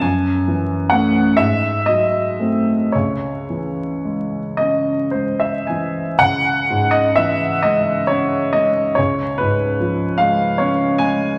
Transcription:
<<
  \new Staff \with { instrumentName = "Grand piano" } { \time 12/8 \key cis \minor \tempo 4. = 42 gis''4 fis''8 e''8 dis''4 cis''4. dis''8 bis'16 e''16 gis''8 | fis''8. dis''16 e''8 dis''8 cis''8 dis''8 cis''8 b'4 eis''8 cis''8 gis''8 | }
  \new Staff \with { instrumentName = "Grand piano" } { \clef bass \time 12/8 \key cis \minor fis,8 e8 <a cis'>8 gis,8 fis8 <a bis>8 cis,8 e8 gis8 cis'8 gis8 e8 | cis,8 gis,8 e8 gis8 cis'8 gis8 cis,8 gis,8 eis8 gis8 cis'8 gis8 | }
>>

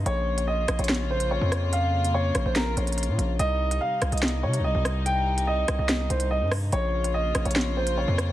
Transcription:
<<
  \new Staff \with { instrumentName = "Grand piano" } { \time 4/4 \key bes \dorian \tempo 4 = 144 des''4 ees''8. des''8. c''8 des''4 | f''4 des''8. c''16 bes'8 des''4. | ees''4 f''8. ees''8. des''8 ees''4 | g''4 ees''8. ees''8. c''8 ees''8 r8 |
des''4 ees''8. des''8. c''8 des''4 | }
  \new Staff \with { instrumentName = "String section" } { \time 4/4 \key bes \dorian <des bes f'>1~ | <des bes f'>1 | <c g ees'>1~ | <c g ees'>1 |
<des bes f'>1 | }
  \new Staff \with { instrumentName = "808-style bass" } { \clef bass \time 4/4 \key bes \dorian bes,,4. bes,,16 bes,,4. f,8.~ | f,4. bes,,16 bes,,8. bes,,8. bes,16 bes,,8 | c,4 r8 c,16 c,8. c16. c,16. c,8.~ | c,4. c,16 c,8. c,8. g,8. |
bes,,4. bes,,16 bes,,4. f,8. | }
  \new DrumStaff \with { instrumentName = "Drums" } \drummode { \time 4/4 hh8. hh16 r8 <hh ss>16 hh32 hh32 <hh sn>32 hh8 r32 hh16 r8 <hh ss>8 | hh8. hh16 r8 <hh ss>8 <hh sn>8 hh16 hh32 hh32 hh32 hh16. hh8 | hh8. hh16 r8 <hh ss>16 hh32 hh32 <hh sn>32 hh8 r32 hh16 r8 <hh ss>8 | hh8. hh16 r8 <hh ss>8 <hh sn>8 hh16 hh16 r8 <hho ss>8 |
hh8. hh16 r8 <hh ss>16 hh32 hh32 <hh sn>32 hh8 r32 hh16 r8 <hh ss>8 | }
>>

